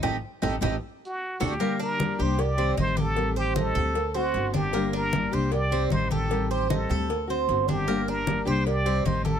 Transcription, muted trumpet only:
\new Staff \with { instrumentName = "Muted trumpet" } { \time 4/4 \key g \minor \tempo 4 = 153 r2 r8 fis'4 g'8~ | g'8 bes'4 c''8 d''4 c''8 a'8~ | a'8 g'8 a'4. fis'4 g'8~ | g'8 bes'4 c''8 d''4 c''8 a'8~ |
a'8 g'8 a'4. r4 g'8~ | g'8 bes'4 c''8 d''4 c''8 a'8 | }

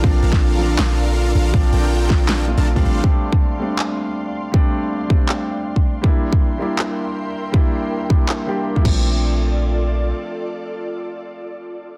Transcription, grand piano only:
\new Staff \with { instrumentName = "Grand piano" } { \time 4/4 \key bes \lydian \tempo 4 = 160 <f c' d'>4. <f c' d'>2~ <f c' d'>8 | <f c' d'>4. <f c' d'>4 <f a c' f'>8. <g a c' d'>8. | <g a c' d'>4. <g a c' d'>2~ <g a c' d'>8 | <g a c' d'>4. <g a c' d'>2~ <g a c' d'>8 |
<g bes d' e'>4. <g bes d' e'>2~ <g bes d' e'>8 | <g bes d' e'>4. <g bes d' e'>4 <g bes d' g'>8. <g bes d' e'>16 <f a c' d'>8~ | <f a c' d'>1~ | <f a c' d'>1 | }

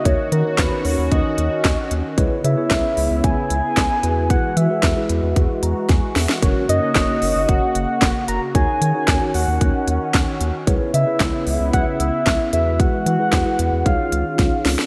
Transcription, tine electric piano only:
\new Staff \with { instrumentName = "Tine electric piano" } { \time 4/4 \key cis \dorian \tempo 4 = 113 << { r1 | r1 | r2 r8 ais''8 gis''8 e''8 | r1 |
r1 | r1 | r1 | } \\ { <dis' fis' ais' cis''>8. <dis' fis' ais' cis''>8 <dis' fis' ais' cis''>4.~ <dis' fis' ais' cis''>16 r4 | <e' gis' b' cis''>8 <e' gis' b' cis''>16 <e' gis' b' cis''>4.~ <e' gis' b' cis''>16 r4 <e' fis' gis' b'>8~ | <e' fis' gis' b'>8 r16 <e' fis' gis' b'>8 <e' fis' gis' b'>4.~ <e' fis' gis' b'>16 r4 | <cis' fis' ais' cis''>8 <cis' fis' ais' cis''>16 <cis' fis' ais' cis''>4.~ <cis' fis' ais' cis''>16 r4. |
<dis' fis' ais' cis''>8. <dis' fis' ais' cis''>8 <dis' fis' ais' cis''>4.~ <dis' fis' ais' cis''>16 r4 | <e' gis' b' cis''>8 <e' gis' b' dis''>16 <e' gis' b' cis''>4.~ <e' gis' b' cis''>16 r4 <e' fis' gis' b'>8~ | <e' fis' gis' b'>8 r16 <e' fis' gis' b'>8 <e' fis' gis' b'>8. <dis' eis' gis' cis''>4.~ <dis' eis' gis' cis''>16 r16 | } >> }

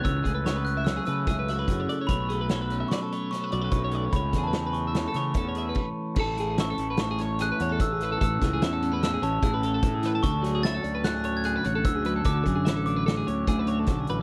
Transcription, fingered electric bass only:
\new Staff \with { instrumentName = "Fingered electric bass" } { \clef bass \time 5/4 \key a \major \tempo 4 = 148 cis,8 cis,2 cis8 cis,4 fis,8 r8 | b,,2 r4. b,,8 b,,4 | cis,8 e,2 cis8 e,4 r4 | a,,4. a,,2 e,8 a,,4 |
a,,8 cis,8 e,4. a,,8 a,,4 a,4 | d,4. d,2 a,,8 d,4 | d,8 fis,8 a,,4. d,8 d,4 b,,8 a,,8 | }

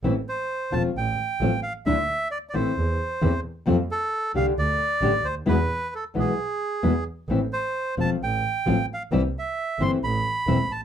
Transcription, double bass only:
\new Staff \with { instrumentName = "Double bass" } { \clef bass \time 4/4 \key a \minor \tempo 4 = 132 a,,8 r4 e,,8 a,,8 r8 a,,8 r8 | d,8 r4 a,,8 e,8 r8 e,8 r8 | f,8 r4 c,8 d,8 r8 a,,8 d,8 | e,8 r4 b,,8 r4 e,8 r8 |
a,,8 r4 e,,8 a,,8 r8 a,,8 r8 | c,8 r4 g,,8 a,,8 r8 e,,8 a,,8 | }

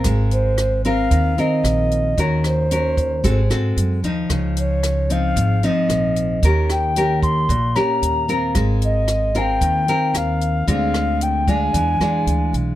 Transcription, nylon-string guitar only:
\new Staff \with { instrumentName = "Nylon-string guitar" } { \time 4/4 \key aes \lydian \tempo 4 = 113 << { <c' f' bes'>4. <c' f' bes'>4 <c' f' bes'>4. | <des' ges' bes'>4 <des' ges' bes'>4 <c' ges' a'>8 <c' ges' a'>4 <f ees'>8~ | <f ees'>4. <f c' ees'>4 <f c' ees'>4. | <des' g' bes'>4 <des' g' bes'>4 r8 <des' g' bes'>4 <c' f' bes'>8~ |
<c' f' bes'>4. <c' f' bes'>4 <c' f' bes'>4. | <aes c' f'>4. <aes d' f'>4 <gis d' f'>4. | } \\ { aes2 ees2 | ees2 aes2 | des2 aes,2 | ees2 bes,2 |
aes2 ees2 | d2 e2 | } >> }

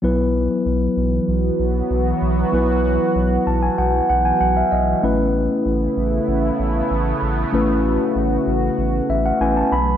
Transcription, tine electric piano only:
\new Staff \with { instrumentName = "Tine electric piano" } { \time 4/4 \key a \lydian \tempo 4 = 96 << { r1 | r4. a''16 gis''16 fis''8 fis''16 gis''16 fis''16 e''16 dis''8 | r1 | r2 r8 e''16 fis''16 gis''16 a''16 b''8 | } \\ { <fis b e' b'>1 | <fis b e' b'>1 | <a cis' e' b'>1 | <a cis' e' b'>2. <a cis' e' b'>8 r8 | } >> }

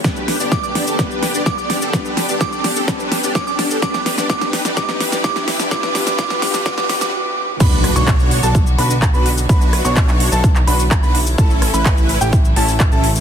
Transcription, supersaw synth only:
\new Staff \with { instrumentName = "Supersaw synth" } { \time 4/4 \key b \minor \tempo 4 = 127 <d' g' b'>8. <d' g' d''>4 <d' g' a'>16 <d' g' b'>8. <d' g' d''>4 <d' g' a'>16 | <d' g' b'>8. <d' g' d''>4 <d' g' a'>16 <d' g' b'>8. <d' g' d''>4 <d' g' a'>16 | <d' g' b'>8. <d' g' d''>16 <d' g' b'>8. <d' g' d''>16 <d' g' b'>8. <d' g' d''>16 <d' g' b'>8. <d' g' d''>16 | <d' g' b'>8 <d' g' b'>8 <d' g' b'>8 <d' g' b'>8 <d' g' b'>8 <d' g' b'>8 r4 |
<d' fis' b'>8. <d' fis' cis''>4 <d' fis' a'>16 r8 <d' fis' b'>16 r8 <d' fis' b'>16 r8 | <d' fis' b'>8. <d' fis' cis''>4 <d' fis' a'>16 r8 <d' fis' b'>16 r8 <d' fis' b'>16 r8 | <cis' e' a'>8. <cis' e' b'>4 <cis' e' g'>16 r8 <cis' e' a'>16 r8 <cis' e' a'>16 r8 | }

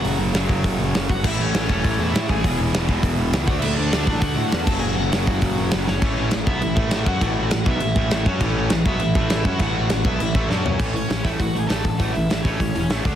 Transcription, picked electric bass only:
\new Staff \with { instrumentName = "Picked electric bass" } { \clef bass \time 4/4 \key fis \minor \tempo 4 = 201 fis,,8 fis,,8 fis,,8 fis,,8 fis,,8 fis,,8 fis,,8 fis,,8 | a,,8 a,,8 a,,8 e,,8 a,,8 e,8 a,8 a,,8 | e,,8 e,,8 e,,8 e,,8 e,,8 e,,8 cis,8 d,8 | d,8 d,8 d,8 a,,8 d,8 a,8 e,8 fis,,8 |
fis,,8 fis,,8 fis,,8 fis,,8 fis,,8 fis,,8 fis,,8 fis,,8 | \key a \major a,,4 a,,8 b,,8 a,,8 a,,4 fis,8 | a,,4 a,,8 b,,8 a,,8 a,,4 fis,8 | a,,4 a,,8 b,,8 a,,8 a,,4 fis,8 |
a,,4 a,,8 b,,8 a,,8 a,,8 fis,4 | a,,4 a,,8 a,,8 a,,8 a,,8 a,,4 | a,,8 a,,8 a,,8 a,,8 a,,8 e,,8 a,,8 d,8 | }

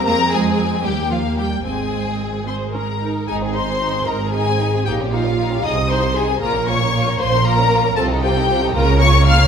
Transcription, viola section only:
\new Staff \with { instrumentName = "Viola section" } { \time 6/8 \key aes \major \tempo 4. = 77 << { <aes c'>4. bes4. | <aes c'>4. c''8 bes'4 | aes'8 c''4 bes'8 aes'4 | g'8 f'4 ees''8 c''8 aes'8 |
bes'8 des''4 c''8 bes'4 | a'8 g'4 bes'8 des''8 f''8 | } \\ { r2. | r4. c'8 des'8 ees'8 | r2. | r2. |
r2. | r2. | } >> }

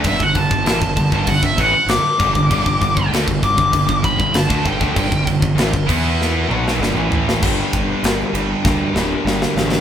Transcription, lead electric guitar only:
\new Staff \with { instrumentName = "Lead electric guitar" } { \time 4/4 \key g \lydian \tempo 4 = 98 e''16 fis''16 a''4. fis''16 e''16 fis''8 d'''4~ | d'''4 r8 d'''4 b''8 a''8 g''8~ | g''8 r2. r8 | r1 | }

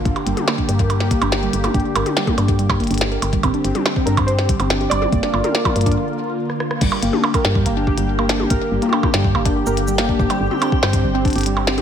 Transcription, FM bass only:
\new Staff \with { instrumentName = "FM bass" } { \clef bass \time 4/4 \key g \minor \tempo 4 = 142 g,,16 r16 g,,16 r8. g,4 g,,16 g,,8. g,,16 r16 | g,,16 r16 g,,16 r8. g,4 g,,16 g,,8. g,,16 r16 | g,,16 r16 g,,16 r8. g,4 g,,16 g,,8. g,,16 r16 | g,,16 r16 g,,16 r8. g,8 r2 |
g,,16 r16 g,,16 r8. g,8 g,,8. g,,4~ g,,16 | g,,16 r16 g,,16 r8. g,8 g,,8. g,,4~ g,,16 | g,,16 r16 g,,16 r8. g,8 g,,8. g,,4~ g,,16 | }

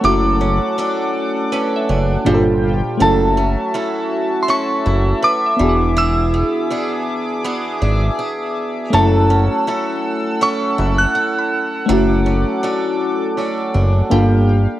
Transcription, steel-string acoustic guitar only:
\new Staff \with { instrumentName = "Steel-string acoustic guitar" } { \time 4/4 \key fis \minor \tempo 4 = 81 <fis a'>8 cis'8 <cis' d' a'>4 <cis' d' a'>8 d'8 g4 | <fis a'>8 cis'8 <cis' e' a'>4 <cis' e' a'>8 e'8 a'8 e8 | <e gis'>8 b8 <b d' gis'>4 <b d' gis'>8 d'8 gis'4 | <fis a'>8 cis'8 <cis' e' a'>4 <cis' e' a'>8 e'8 a'4 |
<fis a'>8 cis'8 <cis' d' a'>4 <cis' d' a'>8 d'8 g4 | }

